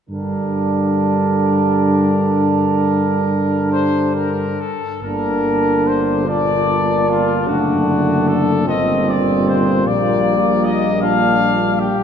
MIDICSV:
0, 0, Header, 1, 6, 480
1, 0, Start_track
1, 0, Key_signature, -2, "minor"
1, 0, Tempo, 802139
1, 57, Time_signature, 6, 3, 24, 8
1, 1976, Tempo, 859599
1, 2936, Tempo, 817439
1, 4376, Tempo, 786370
1, 7160, End_track
2, 0, Start_track
2, 0, Title_t, "Trumpet section"
2, 0, Program_c, 0, 61
2, 59, Note_on_c, 0, 70, 36
2, 2189, Note_off_c, 0, 70, 0
2, 2202, Note_on_c, 0, 72, 64
2, 2429, Note_off_c, 0, 72, 0
2, 2449, Note_on_c, 0, 70, 50
2, 2697, Note_off_c, 0, 70, 0
2, 2705, Note_on_c, 0, 69, 49
2, 2941, Note_off_c, 0, 69, 0
2, 2942, Note_on_c, 0, 70, 47
2, 3414, Note_off_c, 0, 70, 0
2, 3430, Note_on_c, 0, 72, 46
2, 3664, Note_off_c, 0, 72, 0
2, 3681, Note_on_c, 0, 74, 58
2, 4141, Note_off_c, 0, 74, 0
2, 4146, Note_on_c, 0, 65, 47
2, 4378, Note_on_c, 0, 66, 42
2, 4381, Note_off_c, 0, 65, 0
2, 4863, Note_off_c, 0, 66, 0
2, 4868, Note_on_c, 0, 69, 52
2, 5107, Note_off_c, 0, 69, 0
2, 5114, Note_on_c, 0, 75, 58
2, 5347, Note_off_c, 0, 75, 0
2, 5357, Note_on_c, 0, 74, 48
2, 5595, Note_off_c, 0, 74, 0
2, 5601, Note_on_c, 0, 72, 49
2, 5834, Note_on_c, 0, 74, 61
2, 5838, Note_off_c, 0, 72, 0
2, 6309, Note_off_c, 0, 74, 0
2, 6310, Note_on_c, 0, 75, 52
2, 6536, Note_on_c, 0, 77, 65
2, 6546, Note_off_c, 0, 75, 0
2, 7005, Note_off_c, 0, 77, 0
2, 7014, Note_on_c, 0, 67, 52
2, 7160, Note_off_c, 0, 67, 0
2, 7160, End_track
3, 0, Start_track
3, 0, Title_t, "Flugelhorn"
3, 0, Program_c, 1, 56
3, 61, Note_on_c, 1, 62, 36
3, 2730, Note_off_c, 1, 62, 0
3, 2939, Note_on_c, 1, 62, 41
3, 3638, Note_off_c, 1, 62, 0
3, 3664, Note_on_c, 1, 62, 40
3, 4365, Note_off_c, 1, 62, 0
3, 4382, Note_on_c, 1, 62, 35
3, 5107, Note_on_c, 1, 60, 39
3, 5116, Note_off_c, 1, 62, 0
3, 5834, Note_off_c, 1, 60, 0
3, 5840, Note_on_c, 1, 58, 41
3, 6547, Note_on_c, 1, 62, 44
3, 6556, Note_off_c, 1, 58, 0
3, 7095, Note_off_c, 1, 62, 0
3, 7160, End_track
4, 0, Start_track
4, 0, Title_t, "Trombone section"
4, 0, Program_c, 2, 61
4, 57, Note_on_c, 2, 55, 31
4, 2728, Note_off_c, 2, 55, 0
4, 2937, Note_on_c, 2, 58, 37
4, 3637, Note_off_c, 2, 58, 0
4, 3656, Note_on_c, 2, 58, 36
4, 4361, Note_off_c, 2, 58, 0
4, 4374, Note_on_c, 2, 57, 37
4, 5103, Note_off_c, 2, 57, 0
4, 5107, Note_on_c, 2, 55, 38
4, 7160, Note_off_c, 2, 55, 0
4, 7160, End_track
5, 0, Start_track
5, 0, Title_t, "Euphonium"
5, 0, Program_c, 3, 58
5, 58, Note_on_c, 3, 50, 37
5, 2728, Note_off_c, 3, 50, 0
5, 2931, Note_on_c, 3, 50, 39
5, 3659, Note_on_c, 3, 46, 36
5, 3667, Note_off_c, 3, 50, 0
5, 4376, Note_on_c, 3, 50, 41
5, 4385, Note_off_c, 3, 46, 0
5, 5106, Note_on_c, 3, 46, 37
5, 5115, Note_off_c, 3, 50, 0
5, 7094, Note_off_c, 3, 46, 0
5, 7160, End_track
6, 0, Start_track
6, 0, Title_t, "Tuba"
6, 0, Program_c, 4, 58
6, 57, Note_on_c, 4, 43, 30
6, 2728, Note_off_c, 4, 43, 0
6, 2937, Note_on_c, 4, 31, 36
6, 4354, Note_off_c, 4, 31, 0
6, 4379, Note_on_c, 4, 30, 40
6, 5091, Note_off_c, 4, 30, 0
6, 5103, Note_on_c, 4, 31, 40
6, 5817, Note_off_c, 4, 31, 0
6, 5833, Note_on_c, 4, 34, 43
6, 7070, Note_off_c, 4, 34, 0
6, 7160, End_track
0, 0, End_of_file